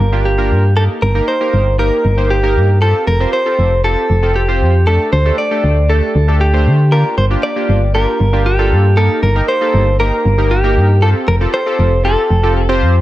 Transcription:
Already playing: clean electric guitar A#4
0.00 fm bass G1
0.12 synth keys A#3 D4 F4 G4
0.25 clean electric guitar G4
0.38 synth keys A#3 D4 F4 A#4
0.51 fm bass G2
0.76 synth keys A#3 D#4 G4 A#4, clean electric guitar A4
1.02 fm bass G1, clean electric guitar A#4
1.15 synth keys A#3 D#4 G4 A#4
1.28 clean electric guitar C5
1.40 synth keys A#3 D#4 G4 A#4
1.53 fm bass G1
1.79 synth keys A#3 D#4 G4 A#4, clean electric guitar A#4
2.05 fm bass G1
2.17 synth keys A#3 D#4 G4 C5
2.30 clean electric guitar G4
2.43 synth keys A#3 D#4 G4 A#4
2.56 fm bass G2
2.82 synth keys C4 F4 G4 A4, clean electric guitar A4
3.07 fm bass F1, clean electric guitar A#4
3.20 synth keys C4 F4 G4 C5
3.33 clean electric guitar C5
3.46 synth keys C4 F4 G4 A4
3.59 fm bass F1
3.84 synth keys C4 F4 G4 A4, clean electric guitar A4
4.10 fm bass F1
4.23 synth keys C4 F4 G4 A4
4.36 clean electric guitar G4
4.48 synth keys C4 F4 G4 C5
4.61 fm bass F2
4.87 synth keys A3 D4 G4 A4, clean electric guitar A4
5.13 fm bass D2, clean electric guitar C5
5.25 synth keys A3 D4 G4 A4
5.38 clean electric guitar D5
5.51 synth keys A3 D4 G4 A4
5.64 fm bass D2
5.89 synth keys A3 D4 G4 A4, clean electric guitar A4
6.15 fm bass D2
6.28 synth keys A3 D4 G4 A4
6.41 clean electric guitar G4
6.53 synth keys A3 D4 G4 C5
6.66 fm bass D3
6.92 synth keys A#3 D4 F4 G4, clean electric guitar A#4
7.18 fm bass G1, clean electric guitar C5
7.30 synth keys A#3 D4 F4 G4
7.43 clean electric guitar D5
7.56 synth keys A#3 D4 F4 G4
7.69 fm bass G1
7.94 synth keys A#3 D4 F4 G4, clean electric guitar A#4
8.20 fm bass G1
8.33 synth keys A#3 D4 F4 G4
8.46 clean electric guitar G4
8.59 synth keys A#3 D4 F4 A4
8.72 fm bass G2
8.97 synth keys A#3 D#4 G4 A#4, clean electric guitar A4
9.23 fm bass G1, clean electric guitar A#4
9.35 synth keys A#3 D#4 G4 A#4
9.48 clean electric guitar C5
9.61 synth keys A#3 D#4 G4 A4
9.74 fm bass G1
10.00 synth keys A#3 D#4 G4 A#4, clean electric guitar A#4
10.25 fm bass G1
10.38 synth keys A#3 D#4 G4 A#4
10.51 clean electric guitar G4
10.64 synth keys A#3 D#4 G4 A#4
10.76 fm bass G2
11.02 synth keys C4 F4 G4 A4, clean electric guitar A4
11.28 fm bass F1, clean electric guitar A#4
11.41 synth keys C4 F4 G4 A4
11.54 clean electric guitar C5
11.66 synth keys C4 F4 G4 A4
11.79 fm bass F1
12.05 synth keys C4 F4 G4 A4, clean electric guitar A4
12.30 fm bass F1
12.43 synth keys C4 F4 G4 A4
12.69 synth keys C4 F4 G4 C5
12.82 fm bass F2

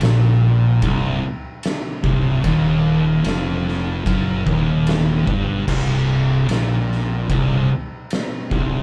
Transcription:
0.01 fingered electric bass A#1, distorted electric guitar A#2, snare, ride bell
0.82 fingered electric bass C1, distorted electric guitar C2, kick, ride bell
1.63 snare, ride bell
2.04 fingered electric bass C1, distorted electric guitar C2, kick
2.44 fingered electric bass D#1, distorted electric guitar D#2, kick, ride bell
3.24 fingered electric bass F1, distorted electric guitar F2, snare, ride bell
3.68 snare
4.06 fingered electric bass F#1, distorted electric guitar F#2, kick, ride bell
4.47 fingered electric bass D#1, distorted electric guitar D#2, kick
4.87 snare, ride bell
5.27 fingered electric bass G1, distorted electric guitar G2, kick
5.67 fingered electric bass C1, distorted electric guitar C2, kick, crash
6.49 fingered electric bass A#1, distorted electric guitar A#2, snare, ride bell
6.92 snare
7.28 fingered electric bass C1, distorted electric guitar C2, kick, ride bell
8.11 snare, ride bell
8.51 fingered electric bass C1, distorted electric guitar C2, kick

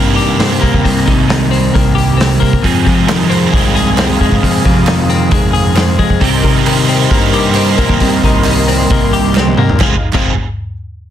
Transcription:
Already playing: fingered electric bass G2, clean electric guitar C3 D#3 A#3 C4, distorted electric guitar C3 D#3 G3 C4 G4
0.16 clean electric guitar G4, open hi-hat
0.39 clean electric guitar C4, snare, open hi-hat
0.61 fingered electric bass C2, clean electric guitar A#3, kick, open hi-hat
0.74 fingered electric bass D#2, kick
0.84 fingered electric bass C2, clean electric guitar C3, kick, open hi-hat
1.06 fingered electric bass C2, clean electric guitar D#3, kick, open hi-hat
1.28 clean electric guitar D#3, snare, open hi-hat
1.51 clean electric guitar C4, open hi-hat
1.74 fingered electric bass C2, clean electric guitar A#3, kick, open hi-hat
1.95 clean electric guitar G4, open hi-hat
2.17 clean electric guitar C4, snare, open hi-hat
2.40 fingered electric bass C3, clean electric guitar A#3, kick, open hi-hat
2.53 fingered electric bass C2, kick
2.62 distorted electric guitar F2 C3 F3 G#3 C4 G#4, clean electric guitar F2, fingered electric bass F2, analog synth pad G#4 F5 D#6, kick, open hi-hat
2.85 clean electric guitar C3, fingered electric bass F3, kick, open hi-hat
3.07 clean electric guitar D#3, snare, clap, open hi-hat
3.20 snare
3.30 clean electric guitar C4, open hi-hat
3.52 fingered electric bass C2, clean electric guitar G#3, kick, open hi-hat
3.75 clean electric guitar G#4, open hi-hat
3.97 clean electric guitar C4, snare, clap, open hi-hat
4.21 fingered electric bass F2, clean electric guitar G#3, kick, open hi-hat
4.32 fingered electric bass G#2, kick
4.43 clean electric guitar F2, fingered electric bass F2, kick, open hi-hat
4.65 fingered electric bass F2, clean electric guitar C3, kick, open hi-hat
4.87 clean electric guitar D#3, snare, clap, open hi-hat
5.10 clean electric guitar C4, open hi-hat
5.31 fingered electric bass F2, clean electric guitar G#3, kick, open hi-hat
5.53 clean electric guitar G#4, open hi-hat
5.76 clean electric guitar C4, snare, clap, open hi-hat
5.99 fingered electric bass F3, clean electric guitar G#3, kick, open hi-hat
6.10 fingered electric bass F2, kick
6.19 fingered electric bass C2, distorted electric guitar C3 D#3 G3 C4 G4, clean electric guitar C3, analog synth pad A#4 D#5 C6, kick, open hi-hat
6.43 fingered electric bass C3, clean electric guitar D#3, kick, open hi-hat
6.66 clean electric guitar D#3, clap, open hi-hat
6.88 clean electric guitar C4, open hi-hat
7.11 fingered electric bass G2, clean electric guitar A#3, kick, open hi-hat
7.33 clean electric guitar G4, open hi-hat
7.54 clean electric guitar C4, clap, open hi-hat
7.78 fingered electric bass C2, clean electric guitar A#3, kick, open hi-hat
7.89 fingered electric bass D#2, kick
8.00 fingered electric bass C2, clean electric guitar C3, kick, open hi-hat
8.23 fingered electric bass C2, clean electric guitar D#3, kick, open hi-hat
8.44 clean electric guitar D#3, clap, open hi-hat
8.68 clean electric guitar C4, open hi-hat
8.90 fingered electric bass C2, clean electric guitar A#3, kick, open hi-hat
9.13 clean electric guitar G4, open hi-hat
9.35 clean electric guitar C4, snare, clap
9.47 high tom
9.57 fingered electric bass C3, clean electric guitar A#3, mid tom
9.69 fingered electric bass C2, floor tom
9.80 fingered electric bass F1, distorted electric guitar F2 C3 F3 G#3 C4 G#4, clean electric guitar F2 C3 D#3 G#3 C4 F4, analog synth pad D#4 G#4 F5, kick, snare, clap
10.13 fingered electric bass F1, distorted electric guitar F2 C3 F3 G#3 C4 G#4, clean electric guitar F2 C3 D#3 G#3 C4 F4, kick, clap, crash

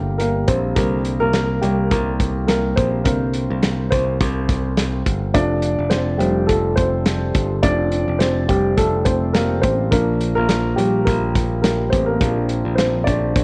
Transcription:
Already playing: picked electric bass G1, upright piano D3 G3 A#3 C4 G4 A#4 C5
0.18 upright piano A#3 A#4, closed hi-hat
0.48 picked electric bass A#1, upright piano C4 C5, kick, closed hi-hat
0.75 picked electric bass C2, upright piano D3 G3 A#3 C4 A#4, kick, closed hi-hat
1.05 closed hi-hat
1.20 picked electric bass C2, upright piano A#3 A#4
1.33 snare, closed hi-hat
1.61 picked electric bass C2, upright piano G3 G4, closed hi-hat
1.91 picked electric bass C2, upright piano A#3 A#4, kick, closed hi-hat
2.20 kick, closed hi-hat
2.47 upright piano A#3 A#4, snare, closed hi-hat
2.76 picked electric bass A#1, upright piano C4 C5, kick, closed hi-hat
3.04 picked electric bass C2, upright piano D3 G3 A#3 C4 A#4, kick, closed hi-hat
3.34 closed hi-hat
3.50 picked electric bass C2
3.63 snare, closed hi-hat
3.90 picked electric bass C2, upright piano C4 C5, kick, closed hi-hat
4.20 picked electric bass C2, kick, closed hi-hat
4.49 kick, snare, closed hi-hat
4.77 snare, closed hi-hat
5.06 picked electric bass G1, kick, closed hi-hat
5.34 picked electric bass F1, upright piano F3 A3 C4 D4 D5, kick, closed hi-hat
5.62 closed hi-hat
5.79 picked electric bass F1
5.90 upright piano C4 C5, snare, closed hi-hat
6.18 picked electric bass F1, upright piano F3 G3 A3 C4 G4, closed hi-hat
6.47 picked electric bass F1, upright piano A3 A4, kick, closed hi-hat
6.76 upright piano C4 C5, kick, closed hi-hat
7.06 snare, closed hi-hat
7.35 picked electric bass G1, kick, closed hi-hat
7.62 picked electric bass F1, upright piano F3 A3 C4 D4 D5, kick, closed hi-hat
7.92 closed hi-hat
8.08 picked electric bass F1
8.19 upright piano C4 C5, snare, closed hi-hat
8.49 picked electric bass F1, upright piano G3 G4, kick, closed hi-hat
8.77 picked electric bass F1, upright piano A3 A4, kick, closed hi-hat
9.05 upright piano C4 C5, kick, closed hi-hat
9.33 upright piano A#3 A#4, snare, closed hi-hat
9.62 picked electric bass A1, upright piano C4 C5, kick, closed hi-hat
9.91 picked electric bass A#1, upright piano F3 A#3 D4 A#4, kick, closed hi-hat
10.21 closed hi-hat
10.35 picked electric bass A#1, upright piano A#3 A#4
10.49 snare, closed hi-hat
10.76 picked electric bass A#1, upright piano G3 G4, closed hi-hat
11.05 picked electric bass A#1, upright piano A#3 A#4, kick, closed hi-hat
11.35 kick, snare, closed hi-hat
11.62 upright piano A#3 A#4, snare, closed hi-hat
11.90 picked electric bass A1, upright piano C4 C5, kick, closed hi-hat
12.06 upright piano A#3 A#4
12.19 picked electric bass A#1, upright piano F3 A#3 D4, kick, closed hi-hat
12.49 closed hi-hat
12.65 picked electric bass A#1
12.75 upright piano C4 C5, snare, closed hi-hat
13.04 picked electric bass A#1, upright piano D4 D5, kick, closed hi-hat
13.35 picked electric bass A#1, kick, closed hi-hat

